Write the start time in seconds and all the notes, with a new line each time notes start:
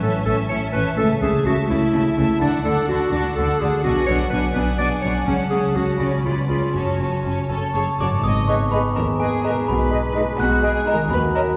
Already playing: A2 E3 A4
0.02 A1 A2 C#4 A4 E5 A5
0.25 A1 A2 C#4 A4 E5 A5
0.49 A1 A2 C#4 C#5 E5 A5
0.72 A1 A2 E3 C#4 B4 E5 A5
0.97 C#2 C#3 A3 A4 E5 A5
1.21 C#2 C#3 A3 G#4 E5 A5
1.45 C#2 C#3 A3 E4 F#4 E5 A5
1.69 C#2 C#3 A3 E4 C#5 E5 A5
1.93 C#2 C#3 A3 E4 E5 A5
2.16 C#2 C#3 A3 E5 A5
2.40 D2 D3 D4 F#5 A5
2.64 D2 D3 A3 D4 A4 F#5 A5
2.88 D2 D3 D4 F#4 F#5 A5
3.12 D2 D3 D4 F#4 D5 F#5 A5
3.35 D2 D3 D4 F#4 A4 F#5 A5
3.59 D2 D3 A3 D4 G#4 F#5 A5
3.84 B1 B2 D4 F#4 F#5 G#5
4.06 B1 B2 F#3 D4 C#5 F#5 G#5
4.30 B1 B2 D4 B4 F#5 G#5
4.53 B1 B2 D4 G#4 B4 F#5 G#5
4.78 B1 B2 D4 D5 F#5 G#5
5.01 B1 B2 F#3 D4 C#5 F#5 G#5
5.26 C#2 C#3 C#4 F#5 A5
5.50 C#2 C#3 C#4 G#4 F#5 A5
5.75 C#2 C#3 C#4 F#4 F#5 A5
5.99 C#2 C#3 C#4 F#4 D5 B5
6.24 C#2 C#3 B3 C#4 F4 D5 B5
6.49 C#2 C#3 C#4 D4 F4 G#4 D5 B5
6.73 F#1 F#2 C#4 F#4 C#5 A5
6.99 F#1 F#2 C#3 C#4 C#5 A5
7.24 F#1 F#2 C#4 C#5 A5
7.49 F#1 F#2 C#4 A4 C#5 A5
7.74 F#1 F#2 C#4 G#4 C#5 A5 C#6
7.99 F#1 F#2 C#3 F#4 C#5 D5 A5 D6
8.07 G#2
8.11 G#3
8.15 B3
8.20 D#4 D#6
8.24 G#1 G#2 B3 G#4 D#5
8.48 G#3 B4 C#5 D#5 C#6
8.71 G#3 B3 G#4 B4 D#5 B5
8.96 D#2 A#4 A#5
9.20 G#3 G#4 B4 D#5 G#5
9.44 G#3 B3 G#4 A#4 B4 D#5 A#5
9.51 B2
9.55 G#3
9.60 D#4
9.68 B1 B2 G#3 B4 B5
9.91 G#3 G#4 D#5
10.15 G#3 D#4 G#4 D#5
10.40 B1 B2 F#4 F#6
10.62 G#3 G#4 D#5 G#5
10.87 G#3 D#4 G#4 A#4 D#5 A#5
10.94 D#3
10.98 A#3
11.03 D#4
11.07 A#3 F#4 B5
11.11 D#2 B4
11.34 F#3 A#4 D#5 A#5